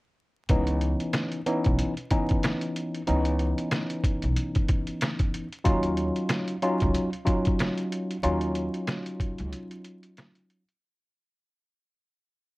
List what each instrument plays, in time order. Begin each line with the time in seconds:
0.49 upright bass C#2, tine electric piano E3 B3 C#4 D#4, kick, closed hi-hat
0.67 closed hi-hat
0.81 closed hi-hat
1.00 closed hi-hat
1.13 snare, closed hi-hat
1.32 closed hi-hat
1.46 tine electric piano E3 B3 C#4 D#4, closed hi-hat
1.64 upright bass B1, kick, closed hi-hat
1.79 closed hi-hat
1.97 closed hi-hat
2.10 tine electric piano E3 B3 C#4 D#4, kick, closed hi-hat
2.29 kick, closed hi-hat
2.43 snare, closed hi-hat
2.61 closed hi-hat
2.76 closed hi-hat
2.94 closed hi-hat
3.07 upright bass C#2, tine electric piano E3 B3 C#4 D#4, closed hi-hat
3.25 closed hi-hat
3.39 closed hi-hat
3.58 closed hi-hat
3.71 snare, closed hi-hat
3.90 closed hi-hat
4.04 kick, closed hi-hat
4.22 upright bass B1, closed hi-hat
4.37 closed hi-hat
4.55 kick, closed hi-hat
4.68 kick, closed hi-hat
4.87 closed hi-hat
5.01 snare, closed hi-hat
5.19 kick, closed hi-hat
5.34 closed hi-hat
5.53 closed hi-hat
5.64 upright bass D#2, tine electric piano F#3 C#4 D#4 F4, kick, closed hi-hat
5.83 closed hi-hat
5.97 closed hi-hat
6.16 closed hi-hat
6.29 snare, closed hi-hat
6.48 closed hi-hat
6.62 tine electric piano F#3 C#4 D#4 F4, closed hi-hat
6.80 upright bass C#2, kick, closed hi-hat
6.95 closed hi-hat
7.13 closed hi-hat
7.25 tine electric piano F#3 C#4 D#4 F4, kick, closed hi-hat
7.45 kick, closed hi-hat
7.59 snare, closed hi-hat
7.77 closed hi-hat
7.92 closed hi-hat
8.11 closed hi-hat
8.23 upright bass D#2, tine electric piano F#3 C#4 D#4 F4, closed hi-hat
8.41 closed hi-hat
8.55 closed hi-hat
8.74 closed hi-hat
8.87 snare, closed hi-hat
9.06 closed hi-hat
9.20 kick, closed hi-hat
9.38 upright bass C#2, closed hi-hat
9.53 closed hi-hat
9.71 closed hi-hat
9.85 closed hi-hat
10.03 closed hi-hat
10.17 snare, closed hi-hat
10.35 closed hi-hat
10.50 closed hi-hat
10.69 closed hi-hat